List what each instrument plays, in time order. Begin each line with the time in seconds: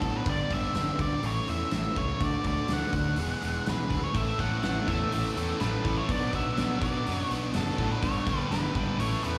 Already playing: lead electric guitar A4
0.02 fingered electric bass A2, distorted electric guitar B2 F#3 B3 D4 F#4, kick, open hi-hat
0.16 lead electric guitar B4
0.26 fingered electric bass G1, distorted electric guitar G2 D3 G3 B3 D4 G4, lead electric guitar D5, kick, open hi-hat
0.50 fingered electric bass G1, distorted electric guitar G2 D3 G3 B3 D4 G4, lead electric guitar E5, kick, open hi-hat
0.74 fingered electric bass G1, distorted electric guitar G2 D3 G3 B3 D4 G4, snare, open hi-hat
0.98 fingered electric bass D2, distorted electric guitar G2 D3 G3 B3 D4 G4, lead electric guitar D5, kick, open hi-hat
1.23 fingered electric bass A1, distorted electric guitar A2 E3 A3 C#4 E4, lead electric guitar C#5, open hi-hat
1.48 fingered electric bass E2, distorted electric guitar A2 E3 A3 C#4 E4, lead electric guitar E5, open hi-hat
1.71 fingered electric bass A1, distorted electric guitar A2 E3 A3 C#4 E4, lead electric guitar E5, snare, open hi-hat
1.96 fingered electric bass C#2, distorted electric guitar A2 E3 A3 C#4 E4, lead electric guitar C#5, kick, open hi-hat
2.20 fingered electric bass D2, distorted electric guitar D3 A3 D4 F#4, lead electric guitar D5, kick, open hi-hat
2.44 fingered electric bass D2, distorted electric guitar D3 A3 D4 F#4, lead electric guitar D5, kick, open hi-hat
2.68 fingered electric bass D2, distorted electric guitar D3 A3 D4 F#4, snare, open hi-hat
2.73 lead electric guitar F#5
2.93 fingered electric bass D2, distorted electric guitar D3 A3 D4 F#4, kick, open hi-hat
3.16 fingered electric bass E1, distorted electric guitar E2 B2 E3 G#3 B3 G#4, open hi-hat
3.42 fingered electric bass E1, distorted electric guitar E2 B2 E3 G#3 B3 G#4, open hi-hat
3.65 fingered electric bass B1, distorted electric guitar E2 B2 E3 G#3 B3 G#4, lead electric guitar B4, snare, open hi-hat
3.89 fingered electric bass D2, distorted electric guitar E2 B2 E3 G#3 B3 G#4, kick, open hi-hat
4.04 lead electric guitar C#5
4.13 fingered electric bass A1, distorted electric guitar A2 E3 A3 C#4 A4, lead electric guitar E5, kick, open hi-hat
4.37 fingered electric bass A1, distorted electric guitar A2 E3 A3 C#4 A4, lead electric guitar F#5, kick, open hi-hat
4.63 fingered electric bass A1, distorted electric guitar A2 E3 A3 C#4 A4, lead electric guitar F#5, snare, open hi-hat
4.87 fingered electric bass E2, distorted electric guitar A2 E3 A3 C#4 A4, lead electric guitar E5, kick, open hi-hat
5.11 fingered electric bass A1, distorted electric guitar A2 E3 A3 C#4 A4, open hi-hat
5.35 fingered electric bass E2, distorted electric guitar A2 E3 A3 C#4 A4, open hi-hat
5.59 fingered electric bass A1, distorted electric guitar A2 E3 A3 C#4 A4, lead electric guitar B4, snare, open hi-hat
5.84 fingered electric bass A1, distorted electric guitar A2 E3 A3 C#4 A4, kick, open hi-hat
5.97 lead electric guitar C#5
6.09 fingered electric bass B1, distorted electric guitar B2 F#3 B3 D4 F#4, lead electric guitar D5, kick, open hi-hat
6.33 fingered electric bass B1, distorted electric guitar B2 F#3 B3 D4 F#4, lead electric guitar E5, kick, open hi-hat
6.57 fingered electric bass B1, distorted electric guitar B2 F#3 B3 D4 F#4, snare, open hi-hat
6.82 fingered electric bass B1, distorted electric guitar B2 F#3 B3 D4 F#4, lead electric guitar D5, kick, open hi-hat
7.07 fingered electric bass F#2, distorted electric guitar B2 F#3 B3 D4 F#4, open hi-hat
7.16 lead electric guitar C#5
7.31 fingered electric bass B1, distorted electric guitar B2 F#3 B3 D4 F#4, open hi-hat
7.54 fingered electric bass F#1, distorted electric guitar B2 F#3 B3 D4, lead electric guitar A4, snare, open hi-hat
7.58 distorted electric guitar F#4
7.78 fingered electric bass A2, distorted electric guitar B2 F#3 B3 D4 F#4, kick, open hi-hat
7.92 lead electric guitar B4
8.02 fingered electric bass G1, distorted electric guitar G2 D3 G3 B3 D4 G4, lead electric guitar C#5, kick, open hi-hat
8.27 fingered electric bass G1, distorted electric guitar G2 D3 G3 B3 D4 G4, kick, open hi-hat
8.51 fingered electric bass G1, distorted electric guitar G2 D3 G3 B3 D4 G4, lead electric guitar B4, snare, open hi-hat
8.74 fingered electric bass G#1, distorted electric guitar G2 D3 G3 B3 D4 G4, kick, open hi-hat
8.98 fingered electric bass A1, distorted electric guitar A2 E3 A3 C#4 A4, lead electric guitar C#5, open hi-hat
9.23 fingered electric bass E2, distorted electric guitar A2 E3 A3 C#4 A4, lead electric guitar B4, open hi-hat